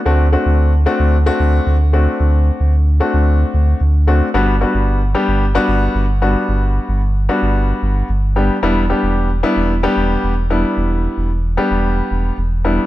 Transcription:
X:1
M:4/4
L:1/16
Q:1/4=112
K:Glyd
V:1 name="Grand piano"
[A,=CDF] z [A,CDF]3 z [A,CDF]2 z [A,CDF]4 z [A,CDF]2- | [A,=CDF]4 z2 [A,CDF]6 z2 [A,CDF] z | [G,B,DF] z [G,B,DF]3 z [G,B,DG]2 z [G,B,DF]4 z [G,B,DF]2- | [G,B,DF]4 z2 [G,B,DF]6 z2 [G,B,DG] z |
[G,B,DE] z [G,B,DG]3 z [G,B,DE]2 z [G,B,DG]4 z [G,B,DE]2- | [G,B,DE]4 z2 [G,B,DG]6 z2 [G,B,DE] z |]
V:2 name="Sub bass" clef=bass
D,,3 D,,4 D,,3 D,,2 D,,4 | D,,3 D,,4 D,,3 D,,2 D,,4 | G,,,3 G,,,4 G,,,3 G,,,2 G,,,4 | G,,,3 G,,,4 G,,,3 G,,,2 G,,,4 |
E,,,3 E,,,4 E,,,3 E,,,2 E,,,4 | E,,,3 E,,,4 E,,,3 E,,,2 E,,,4 |]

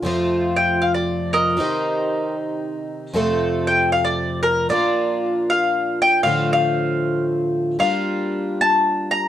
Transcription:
X:1
M:3/4
L:1/16
Q:"Swing" 1/4=116
K:Bb
V:1 name="Mandolin"
z4 g2 f d3 [Be]2- | [Be]6 z6 | z4 g2 f d3 B2 | d6 f4 g2 |
f2 f6 z4 | f6 a4 b2 |]
V:2 name="Twelve-string acoustic guitar"
[F,,C,F,A,CF]12 | [C,E,CEG]12 | [F,,C,F,A,CA]12 | [B,,F,B,DF]12 |
[A,,D,F,A,CF]12 | [G,B,DF]12 |]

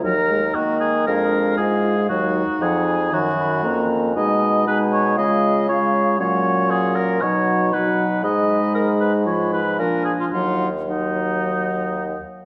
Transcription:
X:1
M:4/4
L:1/16
Q:1/4=117
K:Ebm
V:1 name="Flute"
b8 f8- | f2 z2 g2 a2 b2 c'2 b4 | a4 a4 f4 f4 | g8 ^f4 f4 |
c'8 c'4 a4 | g2 z2 g8- g2 z2 |]
V:2 name="Oboe"
B4 G2 A2 B4 A4 | G4 A4 G6 z2 | e4 c2 d2 e4 d4 | d4 A2 B2 d4 =B4 |
e4 B2 c2 d2 c2 B2 A F | F3 z E8- E2 z2 |]
V:3 name="Clarinet"
E8 =D4 F2 F2 | E8- E2 z2 D4 | E4 E4 F4 F4 | D8 ^D4 D4 |
E8 F2 E2 =D4 | E2 z2 E8- E2 z2 |]
V:4 name="French horn" clef=bass
G,2 A,2 B,4 A,8 | G,2 z2 F,4 E,4 B,4 | A,4 A,4 A,4 A,4 | G,8 ^F,4 F,4 |
A,8 F,4 F,4 | G,2 z2 G,8- G,2 z2 |]
V:5 name="Bassoon" clef=bass
E,,4 E,4 F,,4 A,,4 | E,,2 z2 F,,4 G,,4 F,,4 | C,8 D,8 | B,,8 =B,,8 |
A,,12 B,,4 | E,,12- E,,2 z2 |]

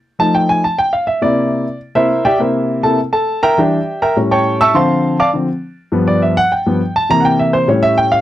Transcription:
X:1
M:4/4
L:1/8
Q:1/4=204
K:Cmix
V:1 name="Grand piano"
z a g _a =a g f e | d4 z [Bce]2 [Gdeg] | [Bce]3 [Aa] z [Aa]2 [Begb] | [Gdeg]3 [Begb] z [^cga^c']2 [eac'e'] |
[cfac']3 [dfad'] z4 | z d e ^f g3 a | b [^fg] e c ^c e g =f |]
V:2 name="Grand piano" clef=bass
z [F,A,_E]3 z4 | [C,B,E]3 z2 [C,B,E] z2 | [C,B,E]3 [C,B,E] z4 | [E,G,D] z3 [A,,G,^C]4 |
[D,F,C]3 z [D,F,C] z3 | [G,,F,=B,]3 z2 [G,,F,B,] z2 | [C,E,B,]4 [A,,G,^C]4 |]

